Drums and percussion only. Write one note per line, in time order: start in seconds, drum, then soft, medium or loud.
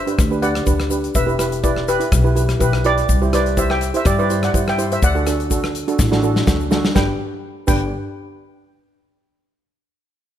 0.07 closed hi-hat medium
0.07 shaker soft
0.19 kick loud
0.19 cross-stick medium
0.19 closed hi-hat medium
0.19 shaker medium
0.32 shaker soft
0.43 closed hi-hat medium
0.43 shaker medium
0.55 cross-stick medium
0.55 closed hi-hat medium
0.55 shaker soft
0.67 kick medium
0.67 closed hi-hat medium
0.67 shaker medium
0.80 cross-stick medium
0.80 shaker soft
0.91 closed hi-hat medium
0.91 shaker medium
1.04 closed hi-hat medium
1.04 shaker soft
1.15 kick medium
1.15 closed hi-hat medium
1.15 shaker medium
1.29 shaker soft
1.39 cross-stick medium
1.39 closed hi-hat medium
1.39 shaker medium
1.52 closed hi-hat medium
1.64 kick medium
1.64 closed hi-hat medium
1.64 shaker medium
1.76 cross-stick medium
1.88 closed hi-hat medium
1.88 shaker medium
2.01 closed hi-hat medium
2.01 shaker soft
2.12 kick loud
2.12 cross-stick medium
2.12 closed hi-hat medium
2.12 shaker medium
2.26 shaker soft
2.36 closed hi-hat medium
2.36 shaker medium
2.49 cross-stick medium
2.49 closed hi-hat medium
2.49 shaker soft
2.60 kick medium
2.60 closed hi-hat medium
2.60 shaker medium
2.73 cross-stick medium
2.73 shaker soft
2.84 closed hi-hat medium
2.98 closed hi-hat medium
2.98 shaker soft
3.09 kick medium
3.09 closed hi-hat medium
3.09 shaker medium
3.22 shaker soft
3.33 cross-stick medium
3.33 closed hi-hat medium
3.33 shaker medium
3.46 closed hi-hat medium
3.57 kick medium
3.57 closed hi-hat medium
3.57 shaker medium
3.70 cross-stick medium
3.81 closed hi-hat medium
3.81 shaker medium
3.94 closed hi-hat medium
3.94 shaker soft
4.05 kick loud
4.05 cross-stick medium
4.05 closed hi-hat medium
4.05 shaker medium
4.19 shaker soft
4.30 closed hi-hat medium
4.30 shaker medium
4.43 cross-stick medium
4.43 closed hi-hat medium
4.43 shaker soft
4.54 kick medium
4.54 closed hi-hat medium
4.54 shaker medium
4.68 cross-stick medium
4.68 shaker soft
4.79 closed hi-hat medium
4.79 shaker medium
4.92 closed hi-hat medium
4.92 shaker soft
5.03 kick loud
5.03 closed hi-hat medium
5.03 shaker loud
5.15 shaker soft
5.27 cross-stick medium
5.27 closed hi-hat medium
5.27 shaker medium
5.40 closed hi-hat medium
5.51 kick medium
5.51 closed hi-hat medium
5.51 shaker medium
5.64 cross-stick medium
5.64 shaker soft
5.75 closed hi-hat medium
5.75 shaker medium
5.88 closed hi-hat medium
5.88 shaker soft
5.99 kick loud
5.99 snare medium
5.99 shaker loud
6.12 snare medium
6.12 shaker soft
6.23 shaker medium
6.36 snare medium
6.36 shaker soft
6.47 kick medium
6.47 snare medium
6.47 shaker medium
6.60 shaker soft
6.71 snare medium
6.71 shaker medium
6.84 snare medium
6.84 shaker soft
6.96 kick medium
6.96 snare medium
6.96 shaker medium
7.68 kick loud
7.68 crash medium
7.68 shaker medium